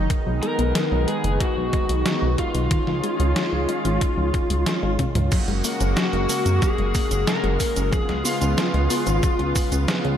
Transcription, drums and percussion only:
0.10 kick loud
0.10 closed hi-hat medium
0.43 closed hi-hat medium
0.59 closed hi-hat medium
0.75 snare loud
0.75 closed hi-hat medium
1.08 closed hi-hat medium
1.24 closed hi-hat medium
1.40 kick loud
1.40 closed hi-hat medium
1.73 kick medium
1.73 closed hi-hat medium
1.89 closed hi-hat medium
2.06 snare loud
2.06 closed hi-hat medium
2.38 kick medium
2.38 closed hi-hat medium
2.55 closed hi-hat medium
2.71 kick loud
2.71 closed hi-hat medium
2.87 snare soft
3.04 closed hi-hat medium
3.20 closed hi-hat medium
3.36 snare loud
3.36 closed hi-hat medium
3.69 closed hi-hat medium
3.85 closed hi-hat medium
4.01 kick loud
4.01 closed hi-hat medium
4.34 kick loud
4.34 closed hi-hat medium
4.50 closed hi-hat medium
4.66 snare loud
4.66 closed hi-hat medium
4.99 kick medium
4.99 closed hi-hat medium
4.99 high tom medium
5.15 closed hi-hat medium
5.15 mid tom medium
5.32 kick loud
5.32 closed hi-hat medium
5.32 crash loud
5.32 shaker soft
5.48 closed hi-hat soft
5.64 open hi-hat medium
5.64 shaker medium
5.81 closed hi-hat medium
5.81 shaker soft
5.97 snare loud
5.97 closed hi-hat medium
5.97 shaker soft
6.13 closed hi-hat soft
6.29 open hi-hat medium
6.29 shaker medium
6.46 closed hi-hat medium
6.46 shaker soft
6.62 kick loud
6.62 closed hi-hat medium
6.62 shaker soft
6.78 closed hi-hat soft
6.95 kick loud
6.95 open hi-hat medium
6.95 shaker medium
7.11 closed hi-hat medium
7.11 shaker soft
7.27 snare loud
7.27 closed hi-hat medium
7.27 shaker soft
7.44 closed hi-hat soft
7.60 kick medium
7.60 open hi-hat medium
7.60 shaker medium
7.76 closed hi-hat medium
7.76 shaker soft
7.93 kick loud
7.93 closed hi-hat medium
7.93 shaker soft
8.09 snare soft
8.09 closed hi-hat soft
8.25 open hi-hat medium
8.25 shaker medium
8.42 closed hi-hat medium
8.42 shaker soft
8.58 snare loud
8.58 closed hi-hat medium
8.58 shaker soft
8.74 closed hi-hat soft
8.90 open hi-hat medium
8.90 shaker medium
9.07 closed hi-hat medium
9.07 shaker soft
9.23 kick loud
9.23 closed hi-hat medium
9.23 shaker soft
9.39 closed hi-hat soft
9.56 kick loud
9.56 open hi-hat medium
9.56 shaker medium
9.72 closed hi-hat medium
9.72 shaker soft
9.88 snare loud
9.88 closed hi-hat medium
9.88 shaker soft
10.05 closed hi-hat soft

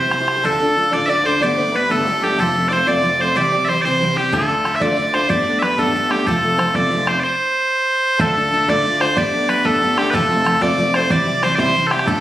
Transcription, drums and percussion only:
0.11 bodhran medium
0.28 bodhran medium
4.33 bodhran medium
4.65 bodhran medium
4.73 bodhran soft
4.81 bodhran medium
4.97 bodhran soft
5.14 bodhran medium
5.30 bodhran medium
5.62 bodhran medium
5.71 bodhran soft
5.79 bodhran medium
5.87 bodhran soft
5.94 bodhran soft
6.11 bodhran medium
6.27 bodhran medium
6.59 bodhran medium
6.67 bodhran soft
6.75 bodhran medium
6.83 bodhran soft
6.91 bodhran soft
7.07 bodhran medium
8.20 bodhran loud
8.60 bodhran soft
8.68 bodhran medium
8.77 bodhran soft
8.85 bodhran soft
9.01 bodhran medium
9.17 bodhran medium
9.49 bodhran medium
9.65 bodhran medium
9.73 bodhran soft
9.81 bodhran soft
9.98 bodhran medium
10.14 bodhran medium
10.46 bodhran medium
10.54 bodhran soft
10.62 bodhran loud
10.70 bodhran soft
10.78 bodhran soft
10.94 bodhran medium
11.10 bodhran medium
11.43 bodhran medium
11.51 bodhran soft
11.58 bodhran medium
11.67 bodhran soft
11.75 bodhran soft
11.91 bodhran medium
11.99 bodhran medium
12.07 bodhran medium

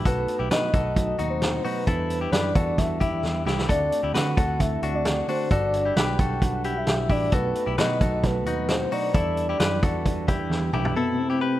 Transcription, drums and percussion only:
0.05 kick medium
0.05 closed hi-hat medium
0.28 closed hi-hat medium
0.51 snare loud
0.51 closed hi-hat loud
0.74 kick loud
0.74 closed hi-hat medium
0.96 kick medium
0.96 closed hi-hat medium
1.19 closed hi-hat medium
1.42 snare loud
1.42 closed hi-hat medium
1.65 open hi-hat medium
1.87 kick medium
1.87 closed hi-hat medium
2.10 closed hi-hat medium
2.33 snare loud
2.33 closed hi-hat medium
2.55 kick loud
2.55 closed hi-hat medium
2.78 kick medium
2.78 snare soft
2.78 closed hi-hat medium
3.01 kick medium
3.01 closed hi-hat medium
3.25 snare medium
3.47 snare medium
3.59 snare medium
3.69 kick medium
3.69 closed hi-hat medium
3.92 closed hi-hat medium
4.15 snare loud
4.15 closed hi-hat loud
4.37 kick loud
4.37 closed hi-hat medium
4.60 kick medium
4.60 closed hi-hat medium
4.83 closed hi-hat medium
5.05 snare medium
5.05 closed hi-hat medium
5.28 open hi-hat medium
5.51 kick medium
5.51 closed hi-hat medium
5.74 closed hi-hat medium
5.96 snare loud
5.96 closed hi-hat medium
6.19 kick loud
6.19 closed hi-hat medium
6.42 kick medium
6.42 closed hi-hat medium
6.64 closed hi-hat medium
6.87 snare loud
6.87 closed hi-hat medium
7.10 kick medium
7.10 open hi-hat medium
7.32 kick loud
7.32 closed hi-hat medium
7.55 closed hi-hat medium
7.78 snare loud
7.78 closed hi-hat medium
8.01 kick medium
8.01 closed hi-hat medium
8.23 kick medium
8.23 snare soft
8.23 closed hi-hat medium
8.46 closed hi-hat medium
8.68 snare medium
8.68 closed hi-hat medium
8.92 open hi-hat medium
9.14 kick loud
9.14 closed hi-hat loud
9.37 closed hi-hat medium
9.60 snare loud
9.60 closed hi-hat loud
9.83 kick loud
9.83 closed hi-hat medium
10.06 kick medium
10.06 closed hi-hat medium
10.28 kick loud
10.28 closed hi-hat medium
10.51 snare medium
10.73 mid tom medium
10.85 floor tom medium

